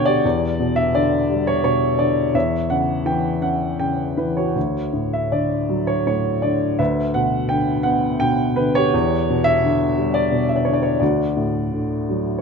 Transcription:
Already playing: D2 B2 D3 B3 B4 C#5 E5 F#5 G5
0.05 G4 D5
0.25 E2
0.59 B2
0.76 E5
0.94 D3 D5
1.30 G3
1.47 C#5
1.64 B2 C#5
1.99 D3 D5
2.34 E2 C#5 E5
2.70 C#3 F#5
3.06 E3 G5
3.42 C#4 F#5
3.79 C#3 G5
4.17 E3 B4
4.37 F#4 C#5
4.56 D2
4.93 A2
5.13 E5
5.31 D3 D5
5.69 F#3
5.87 C#5
6.07 A2 C#5
6.42 D3 D5
6.79 D2 B4 E5
7.14 B2 F#5
7.49 D3 G5
7.83 B3 F#5
8.20 B2 G5
8.56 D3 B4
8.75 G4 C#5
8.94 E2
9.29 B2
9.44 E5
9.64 D3
9.98 G3
10.14 D5
10.32 B2
10.49 E5
10.56 D5
10.65 D3 C#5
10.73 D5
10.83 C#5
11.00 D2 F#4 D5
11.37 A2
11.72 D3
12.09 F#3
12.38 C#5

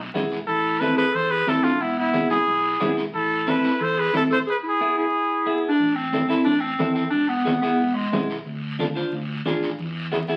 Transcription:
0.14 E1 B3 E4 G#4, high conga, low conga, short guiro
0.32 short guiro
0.47 A1 E4 A4, long guiro
0.80 C4 E4 A4 B4, high conga, short guiro
0.96 G#4 B4, short guiro
1.13 E2 A4 C5, long guiro
1.31 G#4 B4
1.47 A1 C4 E4 A4, high conga, short guiro
1.63 D4 F4, short guiro
1.80 E1 B3 E4, long guiro
1.97 B3 E4
2.13 B3 E4 G#4, high conga, short guiro
2.30 E4 G#4, low conga, short guiro
2.47 B1, long guiro
2.80 E1 B3 E4 G#4, high conga, low conga, short guiro
2.97 short guiro
3.14 A1 E4 A4, long guiro
3.47 C4 E4 A4 B4, high conga, short guiro
3.64 short guiro
3.81 E2 A4 C5, long guiro
3.98 G#4 B4
4.13 A1 C4 E4 A4, high conga, short guiro
4.30 A4 C5, short guiro
4.46 G#4 B4
4.63 E4
4.68 G#4
4.80 B3 E4 G#4
4.97 E4 G#4
5.46 B3 E4 G#4
5.69 D4
5.80 A1, high conga, long guiro
5.95 C4
6.12 C4 E4 A4, high conga, short guiro
6.29 C4 E4 A4, short guiro
6.45 A1 D4, high conga, long guiro
6.60 C4
6.79 E2 C4 E4 A4, high conga, short guiro
6.94 C4, short guiro
7.10 E1 D4, high conga, long guiro
7.28 B3
7.45 B3 E4 G#4, high conga, short guiro
7.62 B3 E4 G#4, short guiro
7.79 E1, high conga, long guiro
7.95 G#3
8.12 B1 B3 E4 G#4, high conga, low conga, short guiro
8.30 short guiro
8.46 D2, high conga, long guiro
8.79 D4 F4 A4, high conga, short guiro
8.95 D4 F4 C5, short guiro
9.12 D2, high conga, long guiro
9.45 A1 D4 F4 G#4, high conga, short guiro
9.63 short guiro
9.78 E2, high conga, long guiro
10.12 B3 E4 G#4, high conga, short guiro
10.28 B3 E4 G#4, short guiro

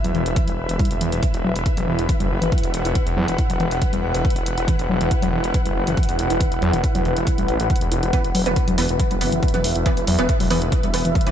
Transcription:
Already playing: E4 B4 E5
0.04 E1 F#3, closed hi-hat
0.15 E1 E3, closed hi-hat
0.26 E1, closed hi-hat
0.36 E3, kick, closed hi-hat
0.47 E1 G3, closed hi-hat
0.58 E1
0.69 E1 E3, closed hi-hat
0.79 G3, kick, closed hi-hat
0.85 closed hi-hat
0.91 E1, closed hi-hat
1.01 E1 E3, closed hi-hat
1.12 E1 E3, closed hi-hat
1.23 E3, kick, closed hi-hat
1.34 E1, closed hi-hat
1.44 E1 F#3
1.55 E1 E3, closed hi-hat
1.66 kick, closed hi-hat
1.74 E1 F#3 F#5, closed hi-hat
1.87 E1 E3
1.99 E1, closed hi-hat
2.09 E3, kick, closed hi-hat
2.20 F#1 G3, closed hi-hat
2.30 F#1
2.42 F#1 E3, closed hi-hat
2.52 E3, kick, closed hi-hat
2.58 closed hi-hat
2.63 E1, closed hi-hat
2.74 E1 E4, closed hi-hat
2.85 E1 E4, closed hi-hat
2.95 E3, kick, closed hi-hat
3.06 E1, closed hi-hat
3.17 E2 F#3
3.28 E1 E3, closed hi-hat
3.38 kick, closed hi-hat
3.50 E1 F#3, closed hi-hat
3.60 E1 E3, closed hi-hat
3.71 E1, closed hi-hat
3.81 E3, kick, closed hi-hat
3.93 E1 G3, closed hi-hat
4.03 E1
4.14 E1 E3, closed hi-hat
4.25 kick, closed hi-hat
4.30 closed hi-hat
4.36 E1, closed hi-hat
4.46 E1 E4, closed hi-hat
4.58 E1 E4, closed hi-hat
4.68 E3, kick, closed hi-hat
4.79 E1, closed hi-hat
4.89 E1 F#3
5.01 E1 E3, closed hi-hat
5.11 kick, closed hi-hat
5.22 E1 F#3, closed hi-hat
5.32 E1 E3
5.44 E1, closed hi-hat
5.54 E3, kick, closed hi-hat
5.65 F#1 G3, closed hi-hat
5.76 F#1
5.87 F#1 E3, closed hi-hat
5.97 E3, kick, closed hi-hat
6.03 closed hi-hat
6.09 E1, closed hi-hat
6.19 E1 E4, closed hi-hat
6.30 E1 E4, closed hi-hat
6.40 E3, kick, closed hi-hat
6.52 E1, closed hi-hat
6.62 E2 F#3, closed hi-hat
6.73 E1 E3, closed hi-hat
6.84 kick, closed hi-hat
6.95 E1 F#3, closed hi-hat
7.05 E1 E3, closed hi-hat
7.16 E1, closed hi-hat
7.27 E3, kick, closed hi-hat
7.38 A1 G3, closed hi-hat
7.48 A1, closed hi-hat
7.60 A1 E3, closed hi-hat
7.70 E3, kick, closed hi-hat
7.76 closed hi-hat
7.81 E1, closed hi-hat
7.92 E1 E4, closed hi-hat
8.03 E1 E4, closed hi-hat
8.13 E3 B3 B4, kick, closed hi-hat
8.24 E1, closed hi-hat
8.35 E1 F#3, open hi-hat
8.46 E1 E3 B3 B4, closed hi-hat
8.56 kick, closed hi-hat
8.64 E1 F#3 E5, closed hi-hat
8.78 E1 E3 B3 B4, open hi-hat
8.89 E1, closed hi-hat
8.99 E3, kick, closed hi-hat
9.11 F#1 G3, closed hi-hat
9.21 F#1 E3 B3 B4, open hi-hat
9.32 F#1 E3, closed hi-hat
9.43 E3, kick, closed hi-hat
9.48 closed hi-hat
9.54 E1 E3 F#3 B3 B4, closed hi-hat
9.64 E1 E4, open hi-hat
9.75 E1 E4, closed hi-hat
9.86 E3 B3 B4, kick, closed hi-hat
9.97 E1, closed hi-hat
10.07 E2 F#3, open hi-hat
10.19 E1 E3 B3 B4, closed hi-hat
10.29 kick, closed hi-hat
10.40 E1 F#3, open hi-hat
10.50 E1 E3 B3 B4, open hi-hat
10.62 E1, closed hi-hat
10.72 E3, kick, closed hi-hat
10.83 E1 G3, closed hi-hat
10.94 E1 E3 B3 B4, open hi-hat
11.05 E1 E3, closed hi-hat
11.15 kick, closed hi-hat
11.21 closed hi-hat
11.27 E1 E3 F#3 B3 B4, closed hi-hat

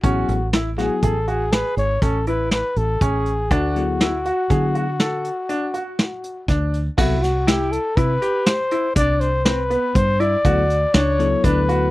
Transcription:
0.04 A1 F#3 B3 C#4 E4 F#4 G#4, kick, closed hi-hat
0.29 A1, closed hi-hat
0.53 E4, snare, closed hi-hat
0.78 F#3 B3 E4 F#4 G#4, snare, closed hi-hat
1.03 A1 G#4 A4, kick, closed hi-hat
1.28 F#4 G#4, closed hi-hat
1.52 G#4 B4, snare, closed hi-hat
1.77 G#1 C#5, closed hi-hat
2.02 A1 C#4 A4, kick, closed hi-hat
2.26 E4 B4, closed hi-hat
2.51 B4, snare, closed hi-hat
2.76 A1 A4, closed hi-hat
3.01 A1 C#4 G#4, kick, closed hi-hat
3.26 closed hi-hat
3.51 D2 D4 F#4, kick, closed hi-hat
3.76 F#3 B3 E4 G#4, closed hi-hat
4.01 E4, snare, closed hi-hat
4.25 F#4, closed hi-hat
4.50 D3 F#3 B3 E4 G#4, kick, closed hi-hat
4.75 F#4, closed hi-hat
5.00 A4, snare, closed hi-hat
5.24 closed hi-hat
5.49 D4, closed hi-hat
5.74 F#4, closed hi-hat
5.99 snare, closed hi-hat
6.24 closed hi-hat
6.48 D2 D4, kick, snare, closed hi-hat
6.74 closed hi-hat
6.98 C2 F#3 B3 E4 F#4 A4, kick, crash
7.22 F#4, snare, closed hi-hat
7.47 E4 G4, snare, closed hi-hat
7.72 A4, closed hi-hat
7.96 C3 E4 B4, kick, closed hi-hat
8.22 G4, closed hi-hat
8.46 C5, snare, closed hi-hat
8.71 E4, closed hi-hat
8.96 C2 D4 D5, kick, closed hi-hat
9.20 C5, closed hi-hat
9.45 C4 B4, snare, closed hi-hat
9.70 B3, closed hi-hat
9.95 G2 C5, kick, closed hi-hat
10.20 E4 D5, closed hi-hat
10.45 D2 F#3 B3 E4 F#4 A4, kick, closed hi-hat
10.70 closed hi-hat
10.94 C#2 D4 C#5, snare, closed hi-hat
11.19 F#3 B3 E4 A4, closed hi-hat
11.44 D2 D4 B4, kick, closed hi-hat
11.69 F#4, closed hi-hat

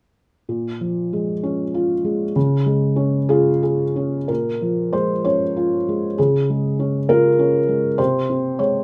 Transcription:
0.49 A#2
0.81 F3
1.13 G#3
1.43 C#4
1.74 F4
2.04 G#3
2.36 C#3
2.66 G#3
2.96 C#4
3.29 F4 G#4
3.63 G#4
3.96 C#4
4.28 A#2 A#4
4.62 F3
4.93 G#3 C5
5.25 C#4 C#5
5.56 F4
5.88 G#3
6.18 C#3 G#4
6.50 G#3
6.79 C#4
7.09 F4 A#4
7.39 C#4
7.69 G#3
7.98 C3 C5
8.30 C4
8.59 G#3 C#5

